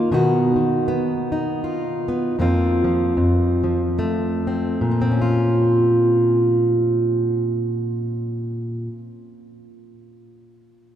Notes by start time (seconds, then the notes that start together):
Already playing: D#3 F4
0.11 B2 D#3 B3 D#4 F#4
0.56 D#3
0.88 B3
1.32 D#4
1.64 F4
2.08 B3
2.39 F2 F3 A#3 C4 F4
2.84 F3
3.17 F2
3.64 F3
3.99 A3
4.47 C4
4.81 A#2
4.91 F3
5.02 C4
5.11 C#4
5.21 F4